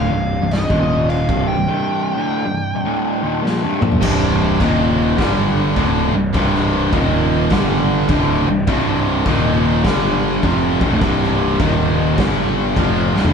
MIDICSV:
0, 0, Header, 1, 6, 480
1, 0, Start_track
1, 0, Key_signature, -3, "minor"
1, 0, Tempo, 583658
1, 1378, Time_signature, 4, 2, 24, 8
1, 10965, End_track
2, 0, Start_track
2, 0, Title_t, "Lead electric guitar"
2, 0, Program_c, 0, 29
2, 0, Note_on_c, 0, 77, 94
2, 426, Note_off_c, 0, 77, 0
2, 430, Note_on_c, 0, 75, 82
2, 903, Note_off_c, 0, 75, 0
2, 906, Note_on_c, 0, 77, 94
2, 1194, Note_off_c, 0, 77, 0
2, 1212, Note_on_c, 0, 79, 83
2, 2788, Note_off_c, 0, 79, 0
2, 10965, End_track
3, 0, Start_track
3, 0, Title_t, "Synth drone"
3, 0, Program_c, 1, 95
3, 0, Note_on_c, 1, 48, 81
3, 0, Note_on_c, 1, 55, 66
3, 0, Note_on_c, 1, 62, 91
3, 554, Note_off_c, 1, 55, 0
3, 555, Note_off_c, 1, 48, 0
3, 555, Note_off_c, 1, 62, 0
3, 1056, Note_on_c, 1, 48, 78
3, 1060, Note_on_c, 1, 55, 76
3, 1060, Note_on_c, 1, 62, 97
3, 3279, Note_off_c, 1, 48, 0
3, 3281, Note_off_c, 1, 55, 0
3, 3281, Note_off_c, 1, 62, 0
3, 4258, Note_on_c, 1, 67, 95
3, 4727, Note_on_c, 1, 60, 78
3, 4735, Note_on_c, 1, 74, 87
3, 5682, Note_off_c, 1, 60, 0
3, 5683, Note_off_c, 1, 67, 0
3, 5686, Note_off_c, 1, 74, 0
3, 6179, Note_on_c, 1, 67, 78
3, 6185, Note_on_c, 1, 74, 70
3, 6653, Note_on_c, 1, 60, 74
3, 7602, Note_off_c, 1, 67, 0
3, 7604, Note_off_c, 1, 60, 0
3, 7605, Note_off_c, 1, 74, 0
3, 8118, Note_on_c, 1, 67, 86
3, 8590, Note_on_c, 1, 74, 89
3, 8596, Note_on_c, 1, 60, 74
3, 9532, Note_off_c, 1, 67, 0
3, 9533, Note_off_c, 1, 74, 0
3, 9536, Note_off_c, 1, 60, 0
3, 10032, Note_on_c, 1, 74, 64
3, 10033, Note_on_c, 1, 67, 75
3, 10957, Note_off_c, 1, 67, 0
3, 10962, Note_off_c, 1, 74, 0
3, 10965, End_track
4, 0, Start_track
4, 0, Title_t, "Distorted electric guitar"
4, 0, Program_c, 2, 30
4, 0, Note_on_c, 2, 38, 94
4, 0, Note_on_c, 2, 45, 95
4, 0, Note_on_c, 2, 50, 102
4, 87, Note_off_c, 2, 38, 0
4, 87, Note_off_c, 2, 45, 0
4, 89, Note_off_c, 2, 50, 0
4, 101, Note_on_c, 2, 36, 58
4, 103, Note_on_c, 2, 43, 73
4, 303, Note_off_c, 2, 36, 0
4, 304, Note_off_c, 2, 43, 0
4, 342, Note_on_c, 2, 36, 58
4, 348, Note_on_c, 2, 43, 74
4, 515, Note_off_c, 2, 36, 0
4, 518, Note_off_c, 2, 43, 0
4, 576, Note_on_c, 2, 39, 82
4, 584, Note_on_c, 2, 46, 97
4, 585, Note_on_c, 2, 51, 99
4, 1046, Note_off_c, 2, 39, 0
4, 1050, Note_off_c, 2, 46, 0
4, 1050, Note_off_c, 2, 51, 0
4, 1060, Note_on_c, 2, 36, 81
4, 1066, Note_on_c, 2, 48, 111
4, 1068, Note_on_c, 2, 43, 95
4, 1289, Note_off_c, 2, 36, 0
4, 1293, Note_off_c, 2, 43, 0
4, 1295, Note_off_c, 2, 48, 0
4, 1299, Note_on_c, 2, 36, 60
4, 1302, Note_on_c, 2, 43, 66
4, 1366, Note_off_c, 2, 36, 0
4, 1370, Note_off_c, 2, 43, 0
4, 1376, Note_on_c, 2, 36, 99
4, 1380, Note_on_c, 2, 43, 90
4, 1384, Note_on_c, 2, 48, 97
4, 1769, Note_off_c, 2, 36, 0
4, 1771, Note_off_c, 2, 43, 0
4, 1773, Note_off_c, 2, 48, 0
4, 1781, Note_on_c, 2, 38, 96
4, 1784, Note_on_c, 2, 45, 91
4, 1789, Note_on_c, 2, 50, 100
4, 2009, Note_off_c, 2, 38, 0
4, 2010, Note_off_c, 2, 45, 0
4, 2013, Note_off_c, 2, 50, 0
4, 2020, Note_on_c, 2, 36, 63
4, 2025, Note_on_c, 2, 43, 58
4, 2225, Note_off_c, 2, 36, 0
4, 2227, Note_off_c, 2, 43, 0
4, 2261, Note_on_c, 2, 36, 68
4, 2266, Note_on_c, 2, 43, 72
4, 2339, Note_off_c, 2, 36, 0
4, 2342, Note_on_c, 2, 38, 107
4, 2343, Note_off_c, 2, 43, 0
4, 2345, Note_on_c, 2, 50, 106
4, 2346, Note_on_c, 2, 45, 112
4, 2645, Note_off_c, 2, 38, 0
4, 2646, Note_off_c, 2, 50, 0
4, 2647, Note_off_c, 2, 45, 0
4, 2654, Note_on_c, 2, 39, 86
4, 2659, Note_on_c, 2, 46, 92
4, 2666, Note_on_c, 2, 51, 98
4, 2809, Note_off_c, 2, 46, 0
4, 2815, Note_off_c, 2, 39, 0
4, 2819, Note_on_c, 2, 46, 93
4, 2822, Note_off_c, 2, 51, 0
4, 2822, Note_on_c, 2, 53, 113
4, 2966, Note_off_c, 2, 46, 0
4, 2968, Note_off_c, 2, 53, 0
4, 2983, Note_on_c, 2, 36, 83
4, 2988, Note_on_c, 2, 43, 97
4, 3127, Note_off_c, 2, 36, 0
4, 3129, Note_off_c, 2, 43, 0
4, 3135, Note_on_c, 2, 46, 101
4, 3139, Note_on_c, 2, 58, 107
4, 3141, Note_on_c, 2, 53, 88
4, 3296, Note_off_c, 2, 46, 0
4, 3298, Note_off_c, 2, 58, 0
4, 3299, Note_off_c, 2, 53, 0
4, 3299, Note_on_c, 2, 36, 87
4, 3302, Note_on_c, 2, 43, 99
4, 3305, Note_on_c, 2, 48, 99
4, 3775, Note_off_c, 2, 36, 0
4, 3776, Note_off_c, 2, 43, 0
4, 3777, Note_off_c, 2, 48, 0
4, 3786, Note_on_c, 2, 39, 92
4, 3789, Note_on_c, 2, 46, 100
4, 3790, Note_on_c, 2, 51, 103
4, 4258, Note_off_c, 2, 39, 0
4, 4259, Note_off_c, 2, 46, 0
4, 4260, Note_off_c, 2, 51, 0
4, 4264, Note_on_c, 2, 43, 103
4, 4265, Note_on_c, 2, 50, 116
4, 4268, Note_on_c, 2, 55, 108
4, 4736, Note_off_c, 2, 43, 0
4, 4737, Note_off_c, 2, 50, 0
4, 4738, Note_off_c, 2, 55, 0
4, 4742, Note_on_c, 2, 38, 100
4, 4745, Note_on_c, 2, 45, 121
4, 4745, Note_on_c, 2, 50, 119
4, 5044, Note_off_c, 2, 38, 0
4, 5045, Note_off_c, 2, 45, 0
4, 5045, Note_off_c, 2, 50, 0
4, 5058, Note_on_c, 2, 36, 66
4, 5059, Note_on_c, 2, 43, 78
4, 5188, Note_off_c, 2, 36, 0
4, 5189, Note_off_c, 2, 43, 0
4, 5225, Note_on_c, 2, 36, 75
4, 5229, Note_on_c, 2, 48, 100
4, 5230, Note_on_c, 2, 43, 98
4, 5696, Note_off_c, 2, 36, 0
4, 5698, Note_off_c, 2, 43, 0
4, 5698, Note_off_c, 2, 48, 0
4, 5700, Note_on_c, 2, 39, 87
4, 5702, Note_on_c, 2, 46, 85
4, 5704, Note_on_c, 2, 51, 102
4, 6173, Note_off_c, 2, 39, 0
4, 6174, Note_off_c, 2, 46, 0
4, 6175, Note_off_c, 2, 51, 0
4, 6178, Note_on_c, 2, 43, 111
4, 6181, Note_on_c, 2, 50, 105
4, 6187, Note_on_c, 2, 55, 110
4, 6652, Note_off_c, 2, 43, 0
4, 6653, Note_off_c, 2, 50, 0
4, 6656, Note_off_c, 2, 55, 0
4, 6660, Note_on_c, 2, 38, 92
4, 6662, Note_on_c, 2, 45, 105
4, 6666, Note_on_c, 2, 50, 105
4, 6962, Note_off_c, 2, 38, 0
4, 6963, Note_off_c, 2, 45, 0
4, 6964, Note_off_c, 2, 50, 0
4, 6978, Note_on_c, 2, 36, 68
4, 6981, Note_on_c, 2, 43, 66
4, 7107, Note_off_c, 2, 36, 0
4, 7108, Note_off_c, 2, 43, 0
4, 7143, Note_on_c, 2, 36, 90
4, 7145, Note_on_c, 2, 43, 93
4, 7149, Note_on_c, 2, 48, 109
4, 7614, Note_off_c, 2, 36, 0
4, 7615, Note_off_c, 2, 43, 0
4, 7617, Note_off_c, 2, 48, 0
4, 7621, Note_on_c, 2, 39, 99
4, 7623, Note_on_c, 2, 46, 93
4, 7630, Note_on_c, 2, 51, 103
4, 8090, Note_off_c, 2, 39, 0
4, 8093, Note_on_c, 2, 43, 107
4, 8094, Note_off_c, 2, 46, 0
4, 8096, Note_off_c, 2, 51, 0
4, 8099, Note_on_c, 2, 55, 121
4, 8100, Note_on_c, 2, 50, 116
4, 8569, Note_off_c, 2, 43, 0
4, 8572, Note_off_c, 2, 50, 0
4, 8572, Note_off_c, 2, 55, 0
4, 8588, Note_on_c, 2, 41, 97
4, 8589, Note_on_c, 2, 53, 118
4, 8590, Note_on_c, 2, 48, 102
4, 8885, Note_off_c, 2, 41, 0
4, 8886, Note_off_c, 2, 48, 0
4, 8886, Note_off_c, 2, 53, 0
4, 8903, Note_on_c, 2, 36, 91
4, 8910, Note_on_c, 2, 43, 106
4, 8974, Note_off_c, 2, 36, 0
4, 8977, Note_off_c, 2, 43, 0
4, 8990, Note_on_c, 2, 38, 91
4, 8994, Note_on_c, 2, 45, 93
4, 9059, Note_off_c, 2, 38, 0
4, 9061, Note_off_c, 2, 45, 0
4, 9067, Note_on_c, 2, 36, 79
4, 9070, Note_on_c, 2, 43, 95
4, 9072, Note_on_c, 2, 48, 92
4, 9536, Note_off_c, 2, 36, 0
4, 9537, Note_off_c, 2, 43, 0
4, 9538, Note_off_c, 2, 48, 0
4, 9546, Note_on_c, 2, 46, 105
4, 9548, Note_on_c, 2, 39, 84
4, 9553, Note_on_c, 2, 51, 95
4, 10016, Note_off_c, 2, 46, 0
4, 10017, Note_off_c, 2, 39, 0
4, 10019, Note_off_c, 2, 51, 0
4, 10025, Note_on_c, 2, 43, 102
4, 10030, Note_on_c, 2, 50, 107
4, 10031, Note_on_c, 2, 55, 109
4, 10496, Note_off_c, 2, 43, 0
4, 10498, Note_off_c, 2, 50, 0
4, 10499, Note_off_c, 2, 55, 0
4, 10509, Note_on_c, 2, 41, 104
4, 10510, Note_on_c, 2, 48, 115
4, 10515, Note_on_c, 2, 53, 93
4, 10807, Note_off_c, 2, 41, 0
4, 10807, Note_off_c, 2, 48, 0
4, 10810, Note_off_c, 2, 53, 0
4, 10827, Note_on_c, 2, 36, 85
4, 10827, Note_on_c, 2, 43, 105
4, 10892, Note_off_c, 2, 36, 0
4, 10896, Note_on_c, 2, 38, 88
4, 10897, Note_off_c, 2, 43, 0
4, 10901, Note_on_c, 2, 45, 94
4, 10965, Note_off_c, 2, 38, 0
4, 10965, Note_off_c, 2, 45, 0
4, 10965, End_track
5, 0, Start_track
5, 0, Title_t, "Picked electric bass"
5, 0, Program_c, 3, 34
5, 87, Note_on_c, 3, 24, 87
5, 313, Note_off_c, 3, 24, 0
5, 334, Note_on_c, 3, 24, 72
5, 557, Note_off_c, 3, 24, 0
5, 577, Note_on_c, 3, 27, 104
5, 1023, Note_off_c, 3, 27, 0
5, 1061, Note_on_c, 3, 24, 80
5, 1281, Note_off_c, 3, 24, 0
5, 1295, Note_on_c, 3, 24, 80
5, 1372, Note_off_c, 3, 24, 0
5, 3306, Note_on_c, 3, 24, 90
5, 3750, Note_off_c, 3, 24, 0
5, 3783, Note_on_c, 3, 27, 89
5, 4228, Note_off_c, 3, 27, 0
5, 4261, Note_on_c, 3, 31, 104
5, 4707, Note_off_c, 3, 31, 0
5, 4738, Note_on_c, 3, 26, 92
5, 5029, Note_off_c, 3, 26, 0
5, 5042, Note_on_c, 3, 24, 78
5, 5201, Note_off_c, 3, 24, 0
5, 5218, Note_on_c, 3, 24, 88
5, 5665, Note_off_c, 3, 24, 0
5, 5699, Note_on_c, 3, 27, 97
5, 6145, Note_off_c, 3, 27, 0
5, 6173, Note_on_c, 3, 31, 97
5, 6622, Note_off_c, 3, 31, 0
5, 6657, Note_on_c, 3, 26, 109
5, 6947, Note_off_c, 3, 26, 0
5, 6965, Note_on_c, 3, 24, 79
5, 7122, Note_off_c, 3, 24, 0
5, 7134, Note_on_c, 3, 24, 93
5, 7581, Note_off_c, 3, 24, 0
5, 7615, Note_on_c, 3, 27, 87
5, 8062, Note_off_c, 3, 27, 0
5, 8097, Note_on_c, 3, 31, 102
5, 8543, Note_off_c, 3, 31, 0
5, 8578, Note_on_c, 3, 29, 100
5, 8868, Note_off_c, 3, 29, 0
5, 8890, Note_on_c, 3, 24, 90
5, 8962, Note_off_c, 3, 24, 0
5, 8967, Note_on_c, 3, 26, 101
5, 9047, Note_off_c, 3, 26, 0
5, 9057, Note_on_c, 3, 24, 90
5, 9503, Note_off_c, 3, 24, 0
5, 9539, Note_on_c, 3, 27, 79
5, 9984, Note_off_c, 3, 27, 0
5, 10020, Note_on_c, 3, 31, 103
5, 10465, Note_off_c, 3, 31, 0
5, 10497, Note_on_c, 3, 29, 108
5, 10788, Note_off_c, 3, 29, 0
5, 10814, Note_on_c, 3, 24, 90
5, 10890, Note_off_c, 3, 24, 0
5, 10896, Note_on_c, 3, 26, 99
5, 10965, Note_off_c, 3, 26, 0
5, 10965, End_track
6, 0, Start_track
6, 0, Title_t, "Drums"
6, 422, Note_on_c, 9, 49, 51
6, 439, Note_on_c, 9, 38, 89
6, 504, Note_off_c, 9, 49, 0
6, 521, Note_off_c, 9, 38, 0
6, 577, Note_on_c, 9, 36, 102
6, 659, Note_off_c, 9, 36, 0
6, 902, Note_on_c, 9, 49, 45
6, 984, Note_off_c, 9, 49, 0
6, 1060, Note_on_c, 9, 36, 118
6, 1143, Note_off_c, 9, 36, 0
6, 2846, Note_on_c, 9, 38, 53
6, 2928, Note_off_c, 9, 38, 0
6, 3142, Note_on_c, 9, 45, 100
6, 3222, Note_on_c, 9, 43, 76
6, 3224, Note_off_c, 9, 45, 0
6, 3304, Note_off_c, 9, 43, 0
6, 3307, Note_on_c, 9, 36, 106
6, 3310, Note_on_c, 9, 49, 59
6, 3310, Note_on_c, 9, 57, 127
6, 3389, Note_off_c, 9, 36, 0
6, 3392, Note_off_c, 9, 49, 0
6, 3392, Note_off_c, 9, 57, 0
6, 3785, Note_on_c, 9, 36, 99
6, 3787, Note_on_c, 9, 49, 63
6, 3867, Note_off_c, 9, 36, 0
6, 3869, Note_off_c, 9, 49, 0
6, 4263, Note_on_c, 9, 36, 106
6, 4264, Note_on_c, 9, 49, 55
6, 4281, Note_on_c, 9, 38, 92
6, 4346, Note_off_c, 9, 36, 0
6, 4346, Note_off_c, 9, 49, 0
6, 4363, Note_off_c, 9, 38, 0
6, 4739, Note_on_c, 9, 49, 57
6, 4740, Note_on_c, 9, 36, 87
6, 4821, Note_off_c, 9, 49, 0
6, 4823, Note_off_c, 9, 36, 0
6, 5215, Note_on_c, 9, 49, 63
6, 5218, Note_on_c, 9, 36, 108
6, 5297, Note_off_c, 9, 49, 0
6, 5300, Note_off_c, 9, 36, 0
6, 5388, Note_on_c, 9, 38, 34
6, 5471, Note_off_c, 9, 38, 0
6, 5696, Note_on_c, 9, 36, 106
6, 5697, Note_on_c, 9, 49, 66
6, 5779, Note_off_c, 9, 36, 0
6, 5779, Note_off_c, 9, 49, 0
6, 6168, Note_on_c, 9, 49, 52
6, 6175, Note_on_c, 9, 36, 95
6, 6185, Note_on_c, 9, 38, 104
6, 6250, Note_off_c, 9, 49, 0
6, 6257, Note_off_c, 9, 36, 0
6, 6267, Note_off_c, 9, 38, 0
6, 6648, Note_on_c, 9, 49, 60
6, 6654, Note_on_c, 9, 36, 107
6, 6730, Note_off_c, 9, 49, 0
6, 6737, Note_off_c, 9, 36, 0
6, 7132, Note_on_c, 9, 49, 68
6, 7135, Note_on_c, 9, 36, 112
6, 7214, Note_off_c, 9, 49, 0
6, 7217, Note_off_c, 9, 36, 0
6, 7612, Note_on_c, 9, 49, 67
6, 7615, Note_on_c, 9, 36, 100
6, 7695, Note_off_c, 9, 49, 0
6, 7697, Note_off_c, 9, 36, 0
6, 8096, Note_on_c, 9, 49, 57
6, 8097, Note_on_c, 9, 36, 91
6, 8113, Note_on_c, 9, 38, 99
6, 8178, Note_off_c, 9, 49, 0
6, 8179, Note_off_c, 9, 36, 0
6, 8195, Note_off_c, 9, 38, 0
6, 8579, Note_on_c, 9, 36, 87
6, 8580, Note_on_c, 9, 49, 53
6, 8661, Note_off_c, 9, 36, 0
6, 8662, Note_off_c, 9, 49, 0
6, 8891, Note_on_c, 9, 36, 114
6, 8974, Note_off_c, 9, 36, 0
6, 9058, Note_on_c, 9, 36, 109
6, 9059, Note_on_c, 9, 49, 60
6, 9141, Note_off_c, 9, 36, 0
6, 9141, Note_off_c, 9, 49, 0
6, 9232, Note_on_c, 9, 38, 34
6, 9314, Note_off_c, 9, 38, 0
6, 9537, Note_on_c, 9, 49, 64
6, 9538, Note_on_c, 9, 36, 110
6, 9620, Note_off_c, 9, 36, 0
6, 9620, Note_off_c, 9, 49, 0
6, 10015, Note_on_c, 9, 49, 57
6, 10018, Note_on_c, 9, 36, 105
6, 10032, Note_on_c, 9, 38, 99
6, 10097, Note_off_c, 9, 49, 0
6, 10100, Note_off_c, 9, 36, 0
6, 10115, Note_off_c, 9, 38, 0
6, 10498, Note_on_c, 9, 36, 97
6, 10501, Note_on_c, 9, 49, 66
6, 10580, Note_off_c, 9, 36, 0
6, 10583, Note_off_c, 9, 49, 0
6, 10825, Note_on_c, 9, 38, 73
6, 10892, Note_on_c, 9, 43, 81
6, 10907, Note_off_c, 9, 38, 0
6, 10965, Note_off_c, 9, 43, 0
6, 10965, End_track
0, 0, End_of_file